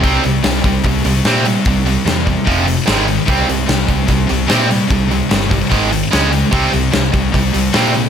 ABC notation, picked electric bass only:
X:1
M:4/4
L:1/8
Q:1/4=148
K:Cm
V:1 name="Picked electric bass" clef=bass
C,, C,, C,, C,, C,, C,, B,,2 | C,,2 =E,,2 F,,,2 A,,,2 | C,, C,, C,, C,, C,, C,, B,,2 | C,,2 G,,,2 A,,,2 _D,,2 |
C,, C,, C,, C,, C,, C,, B,,2 |]